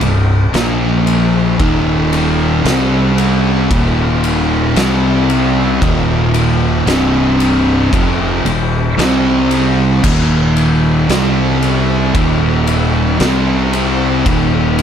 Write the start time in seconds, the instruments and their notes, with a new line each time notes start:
0.01 fingered electric bass C1, distorted electric guitar C2 G2, ride
0.53 fingered electric bass A#1, distorted electric guitar A#2 F3 A#3, snare, ride
1.07 ride
1.59 fingered electric bass D#1, distorted electric guitar D#2 A#2 D#3, kick, ride
2.13 ride
2.65 fingered electric bass C2, distorted electric guitar C3 G3 C4, snare, ride
3.18 ride
3.71 fingered electric bass D#1, distorted electric guitar D#2 A#2 D#3, kick, ride
4.24 ride
4.76 fingered electric bass C2, distorted electric guitar C3 G3 C4, snare, ride
5.30 ride
5.82 fingered electric bass D#1, distorted electric guitar D#2 A#2 D#3, kick, ride
6.34 ride
6.86 fingered electric bass C1, distorted electric guitar C2 G2 C3, snare, ride
7.40 ride
7.92 fingered electric bass F1, distorted electric guitar F2 C3 F3, kick, ride
8.44 fingered electric bass D#1, distorted electric guitar D#2 A#2, ride
8.97 fingered electric bass C2, distorted electric guitar C3 G3 C4, snare, ride
9.51 ride
10.03 fingered electric bass D#1, distorted electric guitar D#2 A#2 D#3, kick, crash
10.57 ride
11.08 fingered electric bass C2, distorted electric guitar C3 G3 C4, snare, ride
11.63 ride
12.14 fingered electric bass D#1, distorted electric guitar D#2 A#2 D#3, kick, ride
12.67 ride
13.19 fingered electric bass C2, distorted electric guitar C3 G3 C4, snare, ride
13.73 ride
14.25 fingered electric bass D#1, distorted electric guitar D#2 A#2 D#3, kick, ride
14.79 ride